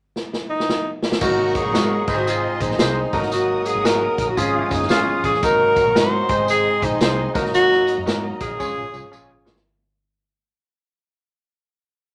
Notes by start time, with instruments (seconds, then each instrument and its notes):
0.16 snare
0.33 snare
0.50 tenor saxophone D#4
0.60 snare
0.69 snare
1.02 snare
1.12 snare
1.21 fingered electric bass G#1, tine electric piano G#2 D#4 F#4 A#4, tonewheel organ F#3 A#3 D#4, tenor saxophone F#4, string section A#4 F#5 C#6, kick, crash, tambourine
1.55 tenor saxophone G#4, kick, closed hi-hat, tambourine
1.65 fingered electric bass A#1
1.74 fingered electric bass G#2, tine electric piano D#4 F#4 A#4, clean electric guitar F#4 A#4 D#5, snare, closed hi-hat, tambourine
2.07 fingered electric bass G#1, tine electric piano G#2 D#4 G#4 B4, tonewheel organ G#3 C4 D#4, horn section C4 D#4 G#4, string section G#4 D#5 C6, kick, tambourine, crash
2.15 tenor saxophone F#4, tine electric piano C5
2.26 horn section C4 D#4 G#4, tenor saxophone F4, closed hi-hat, tambourine
2.60 fingered electric bass A#1, tine electric piano D#4 G#4 C5, tenor saxophone D#4, kick, closed hi-hat, tambourine
2.71 snare
2.79 fingered electric bass C2, tine electric piano D#4 G#4 C5, clean electric guitar G#4 C5 D#5, snare, closed hi-hat, tambourine
3.13 fingered electric bass G#1, tine electric piano G#2 D#4 F#4 A4, tonewheel organ F#3 A#3, clean electric guitar F#4 A#4 D#5, string section A#4 F#5 D#6, kick, open hi-hat, tambourine
3.20 tine electric piano A#4, snare
3.32 tenor saxophone F#4, closed hi-hat, tambourine
3.65 tenor saxophone G#4, closed hi-hat, tambourine
3.75 fingered electric bass G#1
3.84 tine electric piano D#4 F#4 G#4, clean electric guitar F#4 A#4 D#5, tenor saxophone A#4, snare, closed hi-hat, tambourine
4.18 fingered electric bass A#1, horn section D#4 F#4 A#4, kick, closed hi-hat, tambourine
4.29 tenor saxophone F#4
4.37 fingered electric bass G#1, tine electric piano G#2 C#4 F4 G#4, tonewheel organ F3 G#3 C#4, horn section C#4 F4 G#4, tenor saxophone F4, string section G#4 F5 D#6, kick, closed hi-hat, tambourine
4.70 fingered electric bass F#1, tine electric piano C#4 F4 G#4, tenor saxophone D#4, kick, closed hi-hat, tambourine
4.83 snare
4.89 fingered electric bass G#1, tine electric piano C#4 F4 G#4, clean electric guitar F4 G#4 C#5, tenor saxophone F4, snare, closed hi-hat, tambourine
5.24 fingered electric bass A1, clean electric guitar F4 G#4 C#5, tenor saxophone G#4, kick, closed hi-hat, tambourine
5.34 snare
5.43 fingered electric bass G#1, tine electric piano G#2 D#4 F#4 A#4, tonewheel organ F#3 A#3 D#4, string section A#4 F#5 C#6, tenor saxophone A#4, kick, closed hi-hat, tambourine
5.76 kick, closed hi-hat, tambourine
5.86 fingered electric bass A#1
5.95 fingered electric bass G#2, tine electric piano D#4 F#4 A#4, clean electric guitar F#4 A#4 D#5, tenor saxophone C5, snare, closed hi-hat, tambourine
6.29 fingered electric bass G#1, tine electric piano G#2 D#4 G#4 C5, tonewheel organ G#3 C4, horn section C4 D#4 G#4, string section G#4 D#5 C6, kick, closed hi-hat, tambourine
6.48 horn section C4 D#4 G#4, tenor saxophone G#4, closed hi-hat, tambourine
6.82 fingered electric bass A#1, tine electric piano D#4 G#4 C5, tenor saxophone D#4, kick, closed hi-hat, tambourine
7.01 fingered electric bass C2, tine electric piano D#4 G#4 C5, clean electric guitar G#4 C5 D#5, snare, closed hi-hat, tambourine
7.34 fingered electric bass G#1, tine electric piano G#2 D#4 F#4 A#4, tonewheel organ F#3 A#3 D#4, clean electric guitar F#4 A#4 D#5, string section F#4 D#5 A#5, kick, closed hi-hat, tambourine
7.45 snare
7.54 tenor saxophone F#4, closed hi-hat, tambourine
7.72 snare
7.87 closed hi-hat, tambourine
7.98 fingered electric bass F#2
8.06 fingered electric bass G#2, tine electric piano D#4 F#4 A#4, clean electric guitar F#4 A#4 D#5, snare, closed hi-hat, tambourine
8.40 fingered electric bass A#1, horn section D#4 F#4 A#4, tenor saxophone G#4, kick, closed hi-hat, tambourine
8.59 fingered electric bass G#1, tine electric piano G#2 C#4 F4 G#4, tonewheel organ F3 G#3 C#4, horn section F4 G#4 C#5, string section F4 C#5 G#5, kick, tambourine
8.77 fingered electric bass A#1
8.93 fingered electric bass C2, tine electric piano C#4 F4 G#4, tambourine
9.03 fingered electric bass G#1
9.12 fingered electric bass A#1, tine electric piano C#4 F4 G#4, clean electric guitar F4 G#4 C#5, tambourine
9.45 fingered electric bass A1, clean electric guitar F4 G#4 C#5, snare, tambourine
9.56 snare